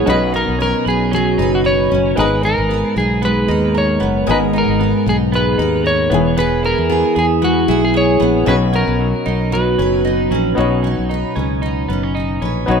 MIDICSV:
0, 0, Header, 1, 6, 480
1, 0, Start_track
1, 0, Tempo, 524934
1, 72, Time_signature, 4, 2, 24, 8
1, 11704, End_track
2, 0, Start_track
2, 0, Title_t, "Electric slide guitar"
2, 0, Program_c, 0, 29
2, 88, Note_on_c, 0, 71, 95
2, 324, Note_off_c, 0, 71, 0
2, 327, Note_on_c, 0, 70, 95
2, 555, Note_off_c, 0, 70, 0
2, 566, Note_on_c, 0, 70, 95
2, 805, Note_off_c, 0, 70, 0
2, 808, Note_on_c, 0, 68, 91
2, 1037, Note_off_c, 0, 68, 0
2, 1048, Note_on_c, 0, 68, 91
2, 1413, Note_off_c, 0, 68, 0
2, 1417, Note_on_c, 0, 66, 73
2, 1463, Note_off_c, 0, 66, 0
2, 1519, Note_on_c, 0, 73, 102
2, 2001, Note_off_c, 0, 73, 0
2, 2005, Note_on_c, 0, 71, 98
2, 2221, Note_off_c, 0, 71, 0
2, 2240, Note_on_c, 0, 70, 97
2, 2718, Note_off_c, 0, 70, 0
2, 2722, Note_on_c, 0, 68, 87
2, 2940, Note_off_c, 0, 68, 0
2, 2972, Note_on_c, 0, 71, 97
2, 3452, Note_off_c, 0, 71, 0
2, 3456, Note_on_c, 0, 73, 85
2, 3935, Note_off_c, 0, 73, 0
2, 3939, Note_on_c, 0, 71, 93
2, 3999, Note_off_c, 0, 71, 0
2, 4188, Note_on_c, 0, 70, 90
2, 4653, Note_off_c, 0, 70, 0
2, 4656, Note_on_c, 0, 68, 83
2, 4718, Note_off_c, 0, 68, 0
2, 4896, Note_on_c, 0, 71, 97
2, 5362, Note_off_c, 0, 71, 0
2, 5365, Note_on_c, 0, 73, 93
2, 5837, Note_off_c, 0, 73, 0
2, 5840, Note_on_c, 0, 71, 94
2, 6082, Note_off_c, 0, 71, 0
2, 6086, Note_on_c, 0, 70, 100
2, 6525, Note_off_c, 0, 70, 0
2, 6571, Note_on_c, 0, 68, 84
2, 6633, Note_off_c, 0, 68, 0
2, 6807, Note_on_c, 0, 66, 94
2, 7171, Note_off_c, 0, 66, 0
2, 7175, Note_on_c, 0, 68, 78
2, 7279, Note_off_c, 0, 68, 0
2, 7290, Note_on_c, 0, 73, 94
2, 7753, Note_off_c, 0, 73, 0
2, 7756, Note_on_c, 0, 71, 98
2, 7820, Note_off_c, 0, 71, 0
2, 8006, Note_on_c, 0, 70, 90
2, 8715, Note_off_c, 0, 70, 0
2, 8718, Note_on_c, 0, 71, 85
2, 9398, Note_off_c, 0, 71, 0
2, 11704, End_track
3, 0, Start_track
3, 0, Title_t, "Upright piano"
3, 0, Program_c, 1, 0
3, 0, Control_c, 1, 64, 127
3, 54, Note_on_c, 1, 61, 70
3, 56, Note_on_c, 1, 63, 61
3, 71, Note_on_c, 1, 66, 59
3, 78, Note_on_c, 1, 71, 58
3, 82, Control_c, 1, 64, 0
3, 86, Note_on_c, 1, 75, 76
3, 266, Control_c, 1, 64, 127
3, 1945, Note_off_c, 1, 61, 0
3, 1946, Note_off_c, 1, 63, 0
3, 1954, Note_off_c, 1, 66, 0
3, 1957, Note_off_c, 1, 71, 0
3, 1961, Note_off_c, 1, 75, 0
3, 1970, Note_on_c, 1, 59, 63
3, 1984, Note_on_c, 1, 63, 60
3, 1994, Note_on_c, 1, 68, 55
3, 2001, Note_on_c, 1, 82, 61
3, 2002, Control_c, 1, 64, 0
3, 2011, Note_on_c, 1, 75, 73
3, 2154, Control_c, 1, 64, 127
3, 3863, Note_off_c, 1, 59, 0
3, 3870, Note_off_c, 1, 63, 0
3, 3875, Note_off_c, 1, 68, 0
3, 3879, Note_off_c, 1, 82, 0
3, 3884, Note_off_c, 1, 75, 0
3, 3909, Note_on_c, 1, 59, 69
3, 3918, Note_on_c, 1, 63, 62
3, 3925, Note_on_c, 1, 68, 58
3, 3936, Note_on_c, 1, 82, 66
3, 3945, Note_on_c, 1, 75, 73
3, 5555, Note_off_c, 1, 59, 0
3, 5560, Note_off_c, 1, 63, 0
3, 5564, Note_off_c, 1, 68, 0
3, 5569, Note_off_c, 1, 82, 0
3, 5574, Note_off_c, 1, 75, 0
3, 5576, Note_on_c, 1, 59, 70
3, 5595, Note_on_c, 1, 64, 63
3, 5600, Control_c, 1, 64, 0
3, 5615, Note_on_c, 1, 68, 81
3, 5736, Control_c, 1, 64, 127
3, 7466, Note_off_c, 1, 59, 0
3, 7476, Note_off_c, 1, 64, 0
3, 7486, Note_off_c, 1, 68, 0
3, 7729, Note_on_c, 1, 59, 65
3, 7740, Note_on_c, 1, 61, 59
3, 7748, Note_on_c, 1, 63, 63
3, 7755, Note_on_c, 1, 66, 63
3, 7763, Control_c, 1, 64, 0
3, 7765, Note_on_c, 1, 73, 78
3, 7906, Control_c, 1, 64, 127
3, 9624, Note_off_c, 1, 59, 0
3, 9630, Note_off_c, 1, 61, 0
3, 9634, Note_off_c, 1, 63, 0
3, 9637, Note_off_c, 1, 66, 0
3, 9642, Note_off_c, 1, 73, 0
3, 9647, Note_on_c, 1, 59, 79
3, 9656, Note_on_c, 1, 63, 71
3, 9670, Note_on_c, 1, 66, 72
3, 9680, Control_c, 1, 64, 0
3, 9683, Note_on_c, 1, 73, 78
3, 9858, Control_c, 1, 64, 127
3, 11547, Note_off_c, 1, 59, 0
3, 11551, Note_off_c, 1, 63, 0
3, 11558, Note_off_c, 1, 66, 0
3, 11565, Note_off_c, 1, 73, 0
3, 11577, Note_on_c, 1, 59, 78
3, 11589, Note_on_c, 1, 63, 67
3, 11600, Note_on_c, 1, 66, 70
3, 11616, Note_on_c, 1, 73, 87
3, 11704, Note_off_c, 1, 59, 0
3, 11704, Note_off_c, 1, 63, 0
3, 11704, Note_off_c, 1, 66, 0
3, 11704, Note_off_c, 1, 73, 0
3, 11704, End_track
4, 0, Start_track
4, 0, Title_t, "Steel-string acoustic guitar"
4, 0, Program_c, 2, 25
4, 0, Note_on_c, 2, 56, 75
4, 0, Note_on_c, 2, 59, 69
4, 0, Note_on_c, 2, 64, 54
4, 65, Note_on_c, 2, 47, 76
4, 71, Note_on_c, 2, 71, 59
4, 124, Note_off_c, 2, 56, 0
4, 125, Note_off_c, 2, 64, 0
4, 309, Note_on_c, 2, 63, 63
4, 549, Note_off_c, 2, 71, 0
4, 553, Note_on_c, 2, 71, 64
4, 794, Note_off_c, 2, 63, 0
4, 798, Note_on_c, 2, 63, 57
4, 1034, Note_on_c, 2, 54, 69
4, 1268, Note_off_c, 2, 71, 0
4, 1272, Note_on_c, 2, 71, 71
4, 1504, Note_off_c, 2, 63, 0
4, 1507, Note_on_c, 2, 63, 53
4, 1747, Note_off_c, 2, 59, 0
4, 1751, Note_on_c, 2, 61, 60
4, 1983, Note_off_c, 2, 47, 0
4, 1987, Note_on_c, 2, 44, 83
4, 1992, Note_off_c, 2, 71, 0
4, 1996, Note_on_c, 2, 70, 59
4, 2044, Note_off_c, 2, 61, 0
4, 2045, Note_off_c, 2, 54, 0
4, 2221, Note_off_c, 2, 63, 0
4, 2225, Note_on_c, 2, 63, 62
4, 2463, Note_off_c, 2, 70, 0
4, 2474, Note_on_c, 2, 70, 61
4, 2702, Note_off_c, 2, 63, 0
4, 2713, Note_on_c, 2, 63, 54
4, 2949, Note_on_c, 2, 56, 70
4, 3174, Note_off_c, 2, 70, 0
4, 3185, Note_on_c, 2, 70, 65
4, 3414, Note_off_c, 2, 63, 0
4, 3425, Note_on_c, 2, 63, 57
4, 3657, Note_on_c, 2, 59, 59
4, 3889, Note_off_c, 2, 44, 0
4, 3894, Note_off_c, 2, 70, 0
4, 3900, Note_on_c, 2, 44, 81
4, 3905, Note_on_c, 2, 70, 66
4, 4134, Note_off_c, 2, 63, 0
4, 4145, Note_on_c, 2, 63, 60
4, 4383, Note_off_c, 2, 70, 0
4, 4394, Note_on_c, 2, 70, 64
4, 4628, Note_off_c, 2, 63, 0
4, 4640, Note_on_c, 2, 63, 65
4, 4875, Note_off_c, 2, 56, 0
4, 4879, Note_on_c, 2, 56, 66
4, 5102, Note_off_c, 2, 70, 0
4, 5113, Note_on_c, 2, 70, 73
4, 5345, Note_off_c, 2, 63, 0
4, 5356, Note_on_c, 2, 63, 58
4, 5593, Note_on_c, 2, 52, 85
4, 5638, Note_off_c, 2, 44, 0
4, 5644, Note_off_c, 2, 70, 0
4, 5646, Note_off_c, 2, 63, 0
4, 5819, Note_off_c, 2, 52, 0
4, 5829, Note_on_c, 2, 52, 84
4, 5835, Note_on_c, 2, 68, 57
4, 6076, Note_on_c, 2, 64, 60
4, 6294, Note_off_c, 2, 68, 0
4, 6305, Note_on_c, 2, 68, 73
4, 6537, Note_off_c, 2, 64, 0
4, 6548, Note_on_c, 2, 64, 61
4, 6781, Note_off_c, 2, 56, 0
4, 6784, Note_on_c, 2, 56, 67
4, 6857, Note_off_c, 2, 59, 0
4, 7014, Note_off_c, 2, 68, 0
4, 7025, Note_on_c, 2, 68, 76
4, 7249, Note_off_c, 2, 64, 0
4, 7260, Note_on_c, 2, 64, 62
4, 7495, Note_on_c, 2, 59, 66
4, 7738, Note_on_c, 2, 47, 81
4, 7744, Note_off_c, 2, 68, 0
4, 7748, Note_on_c, 2, 71, 69
4, 7749, Note_off_c, 2, 52, 0
4, 7797, Note_off_c, 2, 64, 0
4, 7800, Note_off_c, 2, 56, 0
4, 7986, Note_on_c, 2, 63, 68
4, 8460, Note_off_c, 2, 63, 0
4, 8464, Note_on_c, 2, 63, 60
4, 8708, Note_on_c, 2, 54, 75
4, 8950, Note_off_c, 2, 71, 0
4, 8953, Note_on_c, 2, 71, 70
4, 9182, Note_off_c, 2, 63, 0
4, 9186, Note_on_c, 2, 63, 61
4, 9431, Note_off_c, 2, 59, 0
4, 9434, Note_on_c, 2, 61, 66
4, 9661, Note_off_c, 2, 47, 0
4, 9672, Note_on_c, 2, 47, 70
4, 9908, Note_off_c, 2, 63, 0
4, 9912, Note_on_c, 2, 63, 55
4, 9939, Note_off_c, 2, 61, 0
4, 10154, Note_off_c, 2, 71, 0
4, 10158, Note_on_c, 2, 71, 60
4, 10389, Note_on_c, 2, 61, 52
4, 10628, Note_off_c, 2, 63, 0
4, 10631, Note_on_c, 2, 63, 59
4, 10868, Note_off_c, 2, 61, 0
4, 10879, Note_on_c, 2, 61, 59
4, 11122, Note_off_c, 2, 63, 0
4, 11126, Note_on_c, 2, 63, 52
4, 11354, Note_off_c, 2, 71, 0
4, 11357, Note_on_c, 2, 71, 64
4, 11586, Note_off_c, 2, 47, 0
4, 11597, Note_on_c, 2, 47, 71
4, 11704, Note_off_c, 2, 47, 0
4, 11704, Note_off_c, 2, 54, 0
4, 11704, Note_off_c, 2, 61, 0
4, 11704, Note_off_c, 2, 63, 0
4, 11704, Note_off_c, 2, 71, 0
4, 11704, End_track
5, 0, Start_track
5, 0, Title_t, "Clean electric guitar"
5, 0, Program_c, 3, 27
5, 0, Note_on_c, 3, 59, 66
5, 0, Note_on_c, 3, 64, 60
5, 0, Note_on_c, 3, 68, 69
5, 57, Note_on_c, 3, 54, 88
5, 119, Note_off_c, 3, 68, 0
5, 120, Note_off_c, 3, 64, 0
5, 296, Note_on_c, 3, 63, 61
5, 532, Note_off_c, 3, 59, 0
5, 536, Note_on_c, 3, 61, 60
5, 776, Note_on_c, 3, 71, 64
5, 1008, Note_off_c, 3, 61, 0
5, 1019, Note_on_c, 3, 61, 67
5, 1258, Note_off_c, 3, 63, 0
5, 1261, Note_on_c, 3, 63, 60
5, 1498, Note_off_c, 3, 71, 0
5, 1502, Note_on_c, 3, 71, 64
5, 1728, Note_off_c, 3, 61, 0
5, 1739, Note_on_c, 3, 61, 59
5, 1977, Note_off_c, 3, 54, 0
5, 1980, Note_on_c, 3, 56, 89
5, 2038, Note_off_c, 3, 61, 0
5, 2217, Note_off_c, 3, 63, 0
5, 2221, Note_on_c, 3, 63, 54
5, 2460, Note_on_c, 3, 59, 58
5, 2940, Note_off_c, 3, 59, 0
5, 2943, Note_on_c, 3, 59, 65
5, 3176, Note_off_c, 3, 63, 0
5, 3187, Note_on_c, 3, 63, 62
5, 3422, Note_off_c, 3, 71, 0
5, 3426, Note_on_c, 3, 70, 61
5, 3658, Note_off_c, 3, 59, 0
5, 3661, Note_on_c, 3, 59, 62
5, 3901, Note_off_c, 3, 56, 0
5, 3905, Note_on_c, 3, 56, 76
5, 4136, Note_off_c, 3, 63, 0
5, 4147, Note_on_c, 3, 63, 60
5, 4382, Note_off_c, 3, 59, 0
5, 4386, Note_on_c, 3, 59, 63
5, 4628, Note_off_c, 3, 70, 0
5, 4864, Note_off_c, 3, 59, 0
5, 4867, Note_on_c, 3, 59, 71
5, 5092, Note_off_c, 3, 63, 0
5, 5103, Note_on_c, 3, 63, 64
5, 5343, Note_on_c, 3, 70, 67
5, 5575, Note_off_c, 3, 59, 0
5, 5579, Note_on_c, 3, 59, 82
5, 5639, Note_off_c, 3, 63, 0
5, 5639, Note_off_c, 3, 70, 0
5, 5819, Note_off_c, 3, 59, 0
5, 5823, Note_on_c, 3, 59, 81
5, 6062, Note_on_c, 3, 64, 61
5, 6303, Note_off_c, 3, 59, 0
5, 6307, Note_on_c, 3, 59, 61
5, 6543, Note_on_c, 3, 68, 70
5, 6781, Note_off_c, 3, 59, 0
5, 6784, Note_on_c, 3, 59, 72
5, 7020, Note_off_c, 3, 64, 0
5, 7031, Note_on_c, 3, 64, 65
5, 7105, Note_off_c, 3, 56, 0
5, 7253, Note_off_c, 3, 68, 0
5, 7264, Note_on_c, 3, 68, 73
5, 7498, Note_off_c, 3, 59, 0
5, 7502, Note_on_c, 3, 59, 68
5, 7743, Note_on_c, 3, 54, 87
5, 7800, Note_off_c, 3, 68, 0
5, 7803, Note_off_c, 3, 64, 0
5, 7979, Note_off_c, 3, 59, 0
5, 7982, Note_on_c, 3, 61, 59
5, 8223, Note_off_c, 3, 54, 0
5, 8226, Note_on_c, 3, 54, 60
5, 8466, Note_on_c, 3, 63, 71
5, 8704, Note_off_c, 3, 54, 0
5, 8708, Note_on_c, 3, 54, 66
5, 8943, Note_off_c, 3, 61, 0
5, 8946, Note_on_c, 3, 61, 61
5, 9186, Note_off_c, 3, 63, 0
5, 9190, Note_on_c, 3, 63, 62
5, 9426, Note_off_c, 3, 54, 0
5, 9429, Note_on_c, 3, 54, 65
5, 9662, Note_off_c, 3, 54, 0
5, 9665, Note_on_c, 3, 54, 73
5, 9668, Note_off_c, 3, 63, 0
5, 9672, Note_on_c, 3, 63, 62
5, 9899, Note_off_c, 3, 61, 0
5, 9903, Note_on_c, 3, 61, 55
5, 10141, Note_off_c, 3, 63, 0
5, 10144, Note_on_c, 3, 63, 59
5, 10372, Note_off_c, 3, 61, 0
5, 10383, Note_on_c, 3, 61, 57
5, 10622, Note_off_c, 3, 63, 0
5, 10626, Note_on_c, 3, 63, 62
5, 10864, Note_off_c, 3, 61, 0
5, 10868, Note_on_c, 3, 59, 59
5, 11002, Note_off_c, 3, 59, 0
5, 11002, Note_on_c, 3, 61, 44
5, 11105, Note_off_c, 3, 63, 0
5, 11108, Note_on_c, 3, 63, 65
5, 11342, Note_off_c, 3, 61, 0
5, 11353, Note_on_c, 3, 61, 55
5, 11578, Note_off_c, 3, 54, 0
5, 11589, Note_on_c, 3, 54, 79
5, 11592, Note_off_c, 3, 63, 0
5, 11596, Note_on_c, 3, 63, 58
5, 11704, Note_off_c, 3, 54, 0
5, 11704, Note_off_c, 3, 61, 0
5, 11704, Note_off_c, 3, 63, 0
5, 11704, End_track
6, 0, Start_track
6, 0, Title_t, "Fretless electric bass"
6, 0, Program_c, 4, 35
6, 68, Note_on_c, 4, 35, 116
6, 412, Note_off_c, 4, 35, 0
6, 440, Note_on_c, 4, 35, 85
6, 662, Note_off_c, 4, 35, 0
6, 786, Note_on_c, 4, 35, 85
6, 1232, Note_off_c, 4, 35, 0
6, 1265, Note_on_c, 4, 30, 88
6, 1711, Note_off_c, 4, 30, 0
6, 1750, Note_on_c, 4, 30, 80
6, 1971, Note_off_c, 4, 30, 0
6, 1989, Note_on_c, 4, 32, 103
6, 2332, Note_off_c, 4, 32, 0
6, 2359, Note_on_c, 4, 32, 91
6, 2581, Note_off_c, 4, 32, 0
6, 2707, Note_on_c, 4, 35, 88
6, 3152, Note_off_c, 4, 35, 0
6, 3190, Note_on_c, 4, 39, 96
6, 3634, Note_off_c, 4, 39, 0
6, 3672, Note_on_c, 4, 30, 81
6, 3892, Note_off_c, 4, 30, 0
6, 3911, Note_on_c, 4, 32, 110
6, 4253, Note_off_c, 4, 32, 0
6, 4275, Note_on_c, 4, 32, 88
6, 4499, Note_off_c, 4, 32, 0
6, 4630, Note_on_c, 4, 35, 97
6, 5073, Note_off_c, 4, 35, 0
6, 5109, Note_on_c, 4, 39, 87
6, 5553, Note_off_c, 4, 39, 0
6, 5583, Note_on_c, 4, 28, 95
6, 6162, Note_off_c, 4, 28, 0
6, 6201, Note_on_c, 4, 40, 86
6, 6422, Note_off_c, 4, 40, 0
6, 6548, Note_on_c, 4, 40, 78
6, 6992, Note_off_c, 4, 40, 0
6, 7024, Note_on_c, 4, 35, 96
6, 7470, Note_off_c, 4, 35, 0
6, 7504, Note_on_c, 4, 34, 87
6, 7728, Note_off_c, 4, 34, 0
6, 7745, Note_on_c, 4, 35, 112
6, 8090, Note_off_c, 4, 35, 0
6, 8114, Note_on_c, 4, 35, 96
6, 8338, Note_off_c, 4, 35, 0
6, 8473, Note_on_c, 4, 35, 84
6, 8915, Note_off_c, 4, 35, 0
6, 8949, Note_on_c, 4, 30, 89
6, 9394, Note_off_c, 4, 30, 0
6, 9425, Note_on_c, 4, 34, 79
6, 9649, Note_off_c, 4, 34, 0
6, 9669, Note_on_c, 4, 35, 99
6, 10013, Note_off_c, 4, 35, 0
6, 10045, Note_on_c, 4, 35, 74
6, 10265, Note_off_c, 4, 35, 0
6, 10392, Note_on_c, 4, 37, 81
6, 10837, Note_off_c, 4, 37, 0
6, 10873, Note_on_c, 4, 30, 84
6, 11318, Note_off_c, 4, 30, 0
6, 11356, Note_on_c, 4, 34, 74
6, 11577, Note_off_c, 4, 34, 0
6, 11596, Note_on_c, 4, 35, 105
6, 11704, Note_off_c, 4, 35, 0
6, 11704, End_track
0, 0, End_of_file